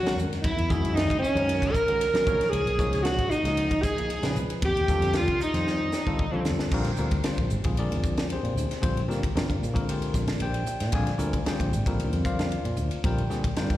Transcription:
Already playing: F#4
0.03 D#3 F#3 G#3 C#4 F#4 A#4, snare, ride
0.16 F#2, hi-hat pedal
0.33 snare, ride
0.42 F#2 E4, kick, ride
0.56 E2, ride
0.69 D#3 G#3 C#4 F#4 G#4, kick, hi-hat pedal
0.82 F#2, ride
0.94 D#4, snare, ride
1.10 C#2, kick, ride
1.19 C#4, muted fretless electric bass stroke
1.24 hi-hat pedal
1.35 F#2 D#3 G#3 C#4 F#4 A#4, ride
1.49 ride
1.62 kick, ride
1.72 A#4, kick, hi-hat pedal
1.88 D#3 G#3 C#4 F#4 A#4, ride
2.01 snare, ride
2.14 D#3 F#3 G#3 C#4 F#4 G#4, snare, ride
2.26 C#2 F3 A#3 D#4 G#4 C#5, kick, hi-hat pedal
2.41 muted fretless electric bass stroke, snare, ride
2.50 C#2 G#4, ride
2.66 B1, ride
2.79 F3 A#3 D#4 G#4 C#5, kick, hi-hat pedal
2.92 C#2, snare, ride
3.03 F#4, snare, ride
3.18 G#1, kick, ride
3.30 D#4, muted fretless electric bass stroke, hi-hat pedal
3.44 C#2 F3 A#3 D#4 G#4 D#5, snare, ride
3.57 ride
3.71 kick, ride
3.83 G#4, kick, hi-hat pedal
3.97 F3 A#3 D#4 G#4 D#5, ride
4.10 ride
4.22 A#2 C#3 F3 D#4 G#4 B4, snare, ride
4.35 C#2, hi-hat pedal
4.49 muted fretless electric bass stroke, ride
4.62 F2 G4, kick, ride
4.76 D#2, ride
4.88 D3 G3 C4 F4 A4, kick, hi-hat pedal
5.01 F2, snare, ride
5.13 F4, snare, ride
5.18 F4
5.27 C2, kick, ride
5.40 D#4, muted fretless electric bass stroke, hi-hat pedal
5.54 F2 D#3 G3 C4 F4 C5, snare, ride
5.67 snare
5.92 snare, hi-hat pedal
6.06 D3 G3 C4 F4 A4, kick
6.19 kick
6.32 D3 F3 G3 C4 F4 A4
6.45 F2, snare, hi-hat pedal
6.59 muted fretless electric bass stroke, snare
6.71 A#1 D3 G3 C4 F4 A#4, kick, crash
6.85 snare, ride
6.96 D2 D3 G3 C4 F4 A#4, hi-hat pedal
7.11 kick, ride
7.24 D3 G3 C4 F4 G4 G#4 C5, muted fretless electric bass stroke, snare, ride
7.38 A#1, kick, ride
7.50 G#1, hi-hat pedal
7.64 A#1 D3 G#3 C4 F4 G#4, kick, ride
7.77 D4 G#4 A#4 D5, ride
7.91 F2, ride
8.04 kick, hi-hat pedal
8.17 snare, ride
8.30 C4 G4 G#4 C5, ride
8.43 A#2, ride
8.55 D2, hi-hat pedal
8.71 snare, ride
8.81 A#1 D3 G3 C4 F4 C5, kick, ride
8.97 ride
9.08 A#2 D3 G3 A#3 C4 F4 G4 A#4, snare, hi-hat pedal
9.23 kick, ride
9.35 G2 D3 G3 C4 F4 A#4, snare, ride
9.50 kick, ride
9.61 A#2, hi-hat pedal
9.74 D3 G#3 C4 F4 A#4, kick, ride
9.89 C4 G4 G#4 C5, ride
10.01 muted fretless electric bass stroke, ride
10.14 A#1, kick, snare, hi-hat pedal
10.28 snare, ride
10.40 A#1 G4 C5 D5 G5, ride
10.54 ride
10.66 muted fretless electric bass stroke, hi-hat pedal
10.80 A#2, snare, ride
10.92 A#1 D3 G3 C4 F4 G#4 D5 F5 G#5, kick, ride
11.07 snare, ride
11.18 D2 D3 G3 C4 F4 A#4, hi-hat pedal
11.33 kick, ride
11.46 D3 G3 C4 F4 G4 G#4 C5 D5 G5, muted fretless electric bass stroke, snare, ride
11.60 A#1, kick, ride
11.72 G#1, hi-hat pedal
11.86 A#1 D3 G3 C4 F4 A#4, kick, ride
12.00 ride
12.12 F2, ride
12.25 F4 C5 D5 F5, kick, hi-hat pedal
12.39 snare, ride
12.52 ride
12.65 A#2, ride
12.77 D2, hi-hat pedal
12.91 ride
13.04 A#1 D3 G3 C4 F4 G4 A#4 C5 D5 G5, kick, ride
13.18 ride
13.29 A#2 D3 G3 C4 F4 G#4, snare, hi-hat pedal
13.44 muted fretless electric bass stroke, kick, ride
13.56 G2 D3 G3 C4 F4 G4 A#4 C5 D5 G5, snare, ride
13.70 kick, ride

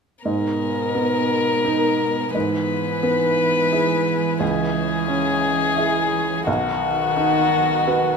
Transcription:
0.25 G#2 B2 B3 A#4 D#5
0.95 B3
1.65 D#4 A#4
2.34 G#2 E3 G#4 B4 E5
3.03 B3
3.72 E4 G#4
4.40 C#2 C#4 G#4
5.08 C#4
5.77 E4 G#4
6.46 B1 D#3 D#4 F#4 D#5
7.17 D#4
7.87 F#4 B4

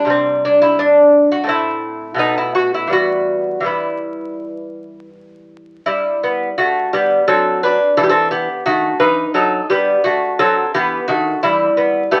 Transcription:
Already playing: D4
0.05 C3 G3
0.10 C4
0.45 D4
0.62 E4
0.79 D4
1.32 F#4
1.44 A2 A3 C4
1.49 E4
2.14 B2 A3 B3
2.19 D#4
2.38 E4
2.55 F#4
2.74 E4
2.87 E3 G3 B3
2.92 F#4
3.60 E3 G3 B3
3.66 E4
5.86 G3 E4
6.23 B3
6.58 A3 F#4
6.93 G3 B3 G4
7.28 F#3 C4 A4
7.63 D4 B4
7.97 E3 A4
8.03 G4
8.09 C4 A4
8.31 B3 G4
8.66 D#3 A3 F#4
9.00 E3 D#4 B4
9.34 F#3 D#4 A4
9.70 G3 B3 G4
10.04 A3 F#4
10.39 F#3 C4 A4
10.74 E3 B3 G4
11.08 D#3 A3 F#4
11.43 E3 G3 E4
11.77 B3
12.11 A3 B3 G4

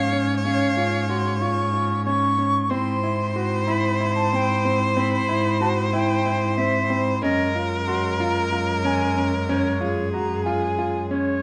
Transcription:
Already playing: G#2 C#3 A#3 C#4 C#5 F5
0.13 C#4
0.44 C#4 F5
0.77 F4
1.09 F#4 C6
1.41 F4 C#6
1.74 F4
2.05 C#4 C#6
2.39 C#4
2.70 G#2 C3 C4 E4 C5 C6
3.03 E4
3.36 F#4
3.66 E4 B5
4.01 E4
4.16 A5
4.31 C4 A5
4.36 G5
4.65 C4
4.97 C4 B5
5.29 E4
5.61 F#4 A5
5.93 E4 G5
6.26 E4
6.56 C4 E5
6.90 C4
7.22 F#2 C#3 F#3 G#3 C#4 A#4 D#5
7.55 F4
7.86 F#4 C6
8.18 F4 A#5
8.52 F4
8.83 C#4 G#5 A#5
9.17 C#4
9.48 C#4 C#5
9.81 F4 G#4
10.13 F#4 A#5
10.45 F4 G#5
10.78 F4
11.11 C#4 C#5

